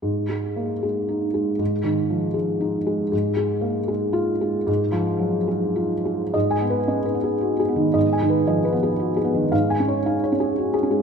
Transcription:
<<
  \new Staff \with { instrumentName = "Felt piano" } { \time 3/4 \key gis \dorian \tempo 4 = 114 << { r2 dis'4 | r2. | r2 eis'4 | r2. |
\tuplet 3/2 { r8 gis''4 } r2 | r2. | \tuplet 3/2 { r8 gis''4 } r2 | } \\ { r2. | r2. | r2. | r2. |
\tuplet 3/2 { dis''4 b'8 dis''8 b'8 gis'8 fis'8 gis'8 dis8 } | \tuplet 3/2 { dis''8 gis''8 b'8 dis''8 b'8 gis'8 fis'8 gis'8 dis8 } | \tuplet 3/2 { eis''4 cis''8 eis''8 cis''8 gis'8 fis'8 gis'8 gis8 } | } >> }
  \new Staff \with { instrumentName = "Felt piano" } { \clef bass \time 3/4 \key gis \dorian gis,8 gis8 ais8 gis4 gis8 | gis,8 dis8 eis8 gis8 dis'8 gis8 | gis,8 gis8 ais8 gis4 gis8 | gis,8 eis8 fis8 gis8 eis'8 gis8 |
gis,8 b8 cis'8 b4 b8 | gis,8 dis8 eis8 b4 b8 | gis,8 cis'8 dis'8 cis'4 cis'8 | }
>>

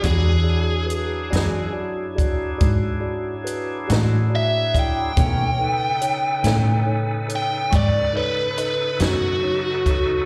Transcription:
<<
  \new Staff \with { instrumentName = "Lead electric guitar" } { \time 12/8 \key e \mixolydian \tempo 4. = 47 gis'2 r2. e''8 g''8~ | g''2~ g''8 g''8 d''8 b'8 b'8 fis'4. | }
  \new Staff \with { instrumentName = "Tine electric piano" } { \time 12/8 \key e \mixolydian <fis' gis' d''>8 <fis' gis' d''>8 <fis' gis' b'>8 <fis' gis' d''>8 <fis' gis' d''>8 <fis' gis' d''>8 <fis' gis' d''>8 <fis' gis' d''>8 <fis' gis' b'>8 <fis' gis' d''>8 <fis' gis' d''>8 <e' gis' d''>8 | <dis' a' cis''>8 <dis' a' b'>8 <dis' a' cis''>8 <dis' a' cis''>8 <dis' a' cis''>8 <dis' a' cis''>8 <dis' a' cis'''>8 <dis' a' cis''>8 <dis' a' dis''>8 <dis' a' cis''>8 <dis' a' cis''>8 <dis' a' cis''>8 | }
  \new Staff \with { instrumentName = "Tonewheel organ" } { \time 12/8 \key e \mixolydian <fis d' e' gis'>1. | <e ais cis' cis''>8 <cis dis' a' b'>1~ <cis dis' a' b'>4. | }
  \new Staff \with { instrumentName = "Clean electric guitar" } { \clef bass \time 12/8 \key e \mixolydian <e gis d' fis'>8 r4 <e gis d' fis'>8 r2 r8 <e gis d' fis'>8 r4 | <b, dis a cis'>8 r4 <b, dis a cis'>8 r2 r8 <b, dis a cis'>8 r4 | }
  \new Staff \with { instrumentName = "Fingered electric bass" } { \clef bass \time 12/8 \key e \mixolydian e,4. fis,4. gis,4. a,4. | b,4. a,4. gis,4. fis,4. | }
  \new DrumStaff \with { instrumentName = "Drums" } \drummode { \time 12/8 <hh bd>4 hh8 <hh sn>4 <hh bd>8 <hh bd>4 hh8 <hh sn>4 <hh bd>8 | <hh bd>4 hh8 <hh sn>4 hh8 <hh bd>4 hh8 <hh sn>4 <hh bd>8 | }
>>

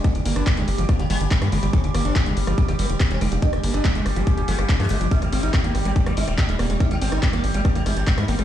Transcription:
<<
  \new Staff \with { instrumentName = "Synth drone" } { \time 4/4 \key g \phrygian \tempo 4 = 142 <g g'>1~ | <g g'>1~ | <g g'>1~ | <g g'>1~ |
<g g'>1 | }
  \new Staff \with { instrumentName = "Acid bass" } { \clef bass \time 4/4 \key g \phrygian g16 r16 bes16 d'16 g16 aes16 r16 f16 g16 g'16 g16 r16 g16 g16 aes16 g16 | g16 r16 bes16 d'16 g16 aes16 r16 f16 g16 g'16 g16 r16 g16 g16 aes16 g16 | g16 r16 bes16 d'16 g16 aes16 r16 f16 g16 g'16 f16 r16 d'16 f16 aes16 f16 | aes16 r16 c'16 ees'16 aes16 bes16 r16 g16 aes16 bes16 aes16 r16 aes16 aes16 bes16 aes16 |
aes16 r16 c'16 ees'16 aes16 bes16 r16 g16 aes16 bes16 aes16 r16 aes16 aes16 bes16 aes16 | }
  \new Staff \with { instrumentName = "Sitar" } { \clef bass \time 4/4 \key g \phrygian bes16 d16 d16 bes16 d16 d16 r16 d16 d16 d16 g16 d16 d16 bes16 d16 d16 | c'16 d16 d16 c'16 d16 d16 r16 d16 d16 d16 bes16 d16 d16 c'16 d16 d16 | d'16 g16 g16 d'16 g16 g16 r16 g16 g16 g16 g16 g16 g16 g16 g16 g16 | ees'16 aes16 aes16 ees'16 aes16 aes16 r16 aes16 aes16 aes16 ees'16 aes16 aes16 ees'16 aes16 aes16 |
ees'16 aes16 aes16 ees'16 aes16 aes16 r16 aes16 r16 aes16 ees'16 aes16 aes16 ees'16 aes16 aes16 | }
  \new Staff \with { instrumentName = "Analog synth bass" } { \clef bass \time 4/4 \key g \phrygian r16 g,,16 g,,16 g,,16 r16 g,,16 g,,16 g,,16 r16 g,,16 g,,16 g,,16 r16 g,16 g,,16 g,,16 | r16 g,,16 g,,16 g,,16 r16 g,,16 g,,16 g,,16 r16 g,,16 g,,16 f,,16 r16 f,,16 f,,16 f,,16 | r16 g,,16 g,,16 g,,16 r16 g,,16 g,,16 g,,16 r16 g,,16 g,,16 g,,16 r16 g,16 g,,16 g,,16 | r16 aes,,16 aes,,16 aes,,16 r16 aes,,16 aes,,16 aes,,16 r16 aes,,16 aes,,16 ees,,16 r16 ees,,16 ees,,16 ees,,16 |
r16 aes,,16 aes,,16 aes,,16 r16 aes,,16 aes,,16 aes,,16 r16 aes,,16 aes,,16 aes,,16 r16 aes,16 aes,,16 aes,,16 | }
  \new DrumStaff \with { instrumentName = "Drums" } \drummode { \time 4/4 <hh bd ss>16 hh16 hho16 <hh ss>16 <hc hh bd>16 <hh ss>16 hho16 hh16 <hh bd ss>16 hh16 <hho ss>16 hh16 <hc hh bd>16 <hh ss>16 hho16 <hh ss>16 | <hh bd>16 hh16 <hho ss>16 hh16 <hc hh bd ss>16 hh16 hho16 <hh ss>16 <hh bd>16 <hh ss>16 hho16 hh16 <hc hh bd ss>16 hh16 <hho ss>16 hh16 | <hh bd>16 <hh ss>16 hho16 <hh ss>16 <hc hh bd>16 hh16 <hho ss>16 hh16 <hh bd ss>16 hh16 hho16 <hh ss>16 <hc hh bd>16 <hh ss>16 hho16 hh16 | <hh bd>16 <hh ss>16 hho16 hh16 <hc hh bd ss>16 hh16 <hho ss>16 hh16 <hh bd>16 <hh ss>16 hho16 <hh ss>16 <hc hh bd>16 hh16 <hho ss>16 hh16 |
<hh bd ss>16 hh16 hho16 <hh ss>16 <hc hh bd>16 <hh ss>16 hho16 hh16 <hh bd ss>16 hh16 <hho ss>16 hh16 <hc hh bd>16 <hh ss>16 hho16 <hh ss>16 | }
>>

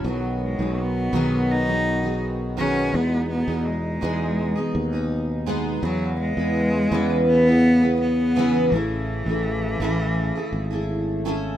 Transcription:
<<
  \new Staff \with { instrumentName = "Steel-string acoustic guitar" } { \time 4/4 \key e \major \tempo 4 = 83 <fis b dis' gis'>8. <fis b dis' gis'>8. <b, dis fis b dis' gis'>8. <fis b dis' gis'>8 <fis b dis' gis'>8. <b, dis fis b dis' gis'>8 | <gis b dis' gis'>8. <b dis' gis'>8. <e gis b dis' gis'>8. <b dis' gis'>8 <b dis' gis'>8. <gis b dis' gis'>8 | <b e' gis' b'>8. <b e' gis' b'>8. <cis e b e' gis' b'>8. <b e' gis' b'>8 <b e' gis' b'>8. <cis e b e' gis' b'>8 | <cis' e' gis' a'>8. <e' gis' a'>8. <a cis' e' gis' a'>8. <e' gis' a'>8 <e' gis' a'>8. <a cis' e' gis' a'>8 | }
  \new Staff \with { instrumentName = "Cello" } { \time 4/4 \key e \major fis8 gis8 b4 dis'4 r8 cis'8 | b8 b8 gis2 r4 | fis8 gis4. b4 b4 | e2.~ e8 r8 | }
  \new Staff \with { instrumentName = "Harmonium" } { \time 4/4 \key e \major << { <fis b fis'>1 | dis'1 | b1 | a1 | } \\ { dis1 | b,1 | cis1~ | cis1 | } >> }
  \new Staff \with { instrumentName = "Fretless electric bass" } { \clef bass \time 4/4 \key e \major b,,8. b,,8. b,,2~ b,,8 | e,8. e,8. e,8. r16 dis,4. | e,8. e,8. e,2~ e,8 | a,,8. a,,8. a,,8. r16 gis,,4. | }
>>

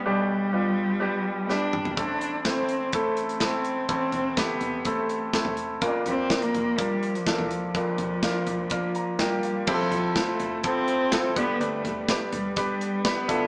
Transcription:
<<
  \new Staff \with { instrumentName = "Clean electric guitar" } { \time 4/4 \key g \mixolydian \tempo 4 = 125 r1 | r1 | r1 | r1 |
r1 | <f c' e' a'>8 <c' e' a'>8 <f c' e' a'>8 <c' e' a'>4. <f c' e' a'>8 <g b d' b'>8 | <g, d g b d' b'>8 <g b d' b'>8 <g b d' b'>8 <g b d' b'>4. <g b d' b'>8 <d' e' a'>8 | }
  \new Staff \with { instrumentName = "Grand piano" } { \time 4/4 \key g \mixolydian << { r1 | r1 | r1 | r1 |
r2 r8 bes''8 g''8 f''8 | r1 | r1 | } \\ { <g b d' g'>4 <g b d' f'>4 <g b d' g'>4 <g b d' g'>4 | <a c' e' a'>4 <a c' e' c''>4 <a c' e' a'>4 <a c' e' a'>4 | <a c' e' a'>4 <c a e' g'>4 <a c' e' a'>4 <a c' e' a'>4 | <bes des' d' f' bes'>4 <bes d' f' bes'>4 <bes d' f' bes'>4 <bes d' f' a' bes'>4 |
<bes d' f' bes'>4 <bes d' f' bes'>4 <bes d' f' bes'>4 <bes d' f' bes'>4 | <c' e' f' g' a'>4 <c' e' f' a'>4 <f c' e' a'>4 <c' e' f' a'>8 <b d' g' b'>8~ | <b d' g' b'>4 <b d' g' d''>4 <b d' g' b'>4 <b d' g' b'>8 <d' e' f' a'>8 | } >> }
  \new Staff \with { instrumentName = "Grand piano" } { \clef bass \time 4/4 \key g \mixolydian <b,, b,>1 | <a,, e,>1 | <a,, e,>1 | <bes,, f,>1 |
<bes,, f,>1 | <f, c>2.~ <f, c>8 <g, d>8~ | <g, d>2.~ <g, d>8 <d, a,>8 | }
  \new Staff \with { instrumentName = "Cello" } { \time 4/4 \key g \mixolydian g2. d'4 | d'4 c'4 a4 c'4 | c'4 b4 a4. r8 | r8 c'8. bes8. g8. f16 e8 f8~ |
f2. g4 | f4 a4 c'4. b8 | a4 r8 g8 g4 b4 | }
  \new DrumStaff \with { instrumentName = "Drums" } \drummode { \time 4/4 r4 r4 r4 sn8 toml16 tomfh16 | <hh bd>8 hh8 <hh bd sn>8 hh8 <hh bd>8 hh16 hh16 <hh bd sn>8 hh8 | <hh bd>8 <hh tomfh>8 <hh bd sn>8 <hh tomfh>8 <hh bd>8 hh8 <hh bd sn>16 tomfh16 hh8 | <hh bd>8 <hh tomfh>8 <hh bd sn>16 hh16 <hh tomfh>8 <hh bd>8 hh16 hh16 <hh bd sn>16 tomfh16 hh8 |
<hh bd>8 <hh tomfh>8 <hh bd sn>8 <hh tomfh>8 <hh bd>8 hh8 <hh bd sn>8 hh8 | <cymc bd>8 <hh tomfh>8 <hh bd sn>8 <hh tomfh>8 <hh bd>8 hh8 <hh bd sn>8 <hh bd>8 | hh8 <hh tomfh>8 <hh bd sn>8 <hh tomfh>8 <hh bd>8 hh8 <hh bd sn>8 <hh bd>8 | }
>>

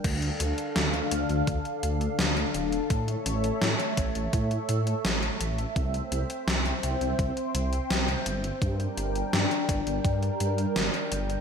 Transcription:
<<
  \new Staff \with { instrumentName = "Analog synth pad" } { \time 4/4 \key d \minor \tempo 4 = 84 << { f''1 | e''1 | g''1~ | g''1 | } \\ { <d d' a'>1 | <a cis''>1 | <c' c''>1 | <g d' bes'>1 | } >> }
  \new Staff \with { instrumentName = "Detuned saw bass" } { \clef bass \time 4/4 \key d \minor d,16 r16 d,16 r16 d,16 r16 d,16 d,16 d,16 r16 d,16 r16 d,16 r16 d,,16 r16 | a,16 r16 a,,16 r16 a,16 r16 a,,16 a,,16 a,16 r16 a,16 r16 a,,16 r16 a,,16 r16 | c,16 r16 c,16 r16 c,16 r16 c,16 c,16 c,16 r16 c,16 r16 c,16 r16 g,,16 r16 | g,16 r16 g,,16 r16 g,16 r16 g,,16 g,,16 g,16 r16 g,16 r16 g,,16 r16 g,,16 r16 | }
  \new DrumStaff \with { instrumentName = "Drums" } \drummode { \time 4/4 <cymc hh bd>16 hh16 hh16 hh16 <hh sn>16 hh16 hh16 hh16 <hh bd>16 hh16 hh16 hh16 <hh sn>16 hh16 hh16 hh16 | <hh bd>16 hh16 hh16 hh16 <hh sn>16 hh16 <hh bd>16 hh16 <hh bd>16 hh16 hh16 hh16 <hh sn>16 hh16 hh16 hh16 | <hh bd>16 hh16 hh16 hh16 <hh sn>16 hh16 hh16 hh16 <hh bd>16 hh16 hh16 hh16 <hh sn>16 hh16 hh16 hh16 | <hh bd>16 hh16 hh16 hh16 <hh sn>16 hh16 <hh bd>16 hh16 <hh bd>16 hh16 hh16 hh16 <hh sn>16 hh16 hh16 hh16 | }
>>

